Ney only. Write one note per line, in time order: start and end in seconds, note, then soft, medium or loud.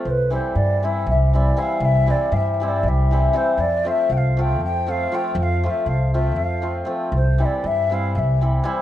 0.05 0.11 C5 medium
0.10 0.30 B4 medium
0.33 0.57 C5 medium
0.55 0.85 D5 medium
0.84 1.08 E5 medium
1.09 1.37 E5 medium
1.35 1.60 D5 medium
1.58 1.81 F5 medium
1.81 2.11 E5 loud
1.81 1.85 F5 medium
2.10 2.34 D5 medium
2.33 2.53 E5 medium
2.33 2.37 F5 medium
2.53 2.64 E5 medium
2.64 2.69 E5 medium
2.68 2.90 D5 medium
2.88 3.37 E5 medium
3.36 3.61 C5 medium
3.59 3.89 D5 medium
3.87 4.13 E5 medium
3.87 3.92 F5 medium
4.12 4.18 G5 medium
4.17 4.42 F5 medium
4.41 4.63 G5 medium
4.64 4.91 G5 loud
4.90 5.16 F5 medium
5.14 5.38 G5 medium
5.38 5.43 G5 medium
5.42 5.66 F5 medium
5.66 5.89 E5 medium
5.66 5.71 F5 medium
5.88 6.14 F5 medium
6.14 6.37 E5 medium
6.36 6.87 F5 medium
7.15 7.43 C5 medium
7.42 7.68 D5 medium
7.42 7.46 E5 medium
7.66 7.95 E5 medium
7.93 8.14 F5 medium
8.15 8.39 E5 medium
8.15 8.19 F5 medium